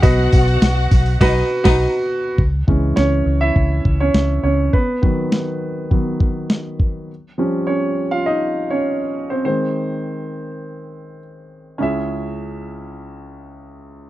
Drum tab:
CC |--------x--x----|----------------|----------------|----------------|
HH |oooooooo--------|----------------|----------------|----------------|
SD |-o--o---o--o----|----o-------o---|----o-------o---|----------------|
BD |o-o---o-o--o----|o-o-----o-o-----|o-o-----o-o---o-|----------------|

CC |----------------|----------------|
HH |----------------|----------------|
SD |----------------|----------------|
BD |----------------|----------------|